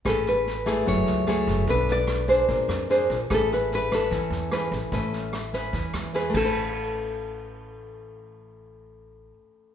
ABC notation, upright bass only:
X:1
M:4/4
L:1/8
Q:1/4=148
K:A
V:1 name="Upright bass" clef=bass
A,,,4 F,,, C,,2 F,,, | B,,,4 _B,,, =F,,2 B,,, | A,,,4 E,, E,,2 A,,, | A,,,4 E,, E,,2 A,,,- |
A,,,8- | A,,,8 |]